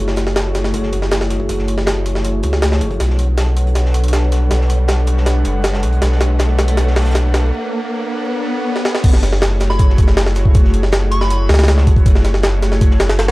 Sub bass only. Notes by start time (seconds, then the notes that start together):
0.00 F#1
1.49 F#1
2.43 C#2
2.81 F#1
3.00 B1
4.51 B1
5.45 F#1
5.83 B1
6.02 B1
9.04 F#1
10.55 F#1
11.49 C#2
11.87 F#1
12.06 F#1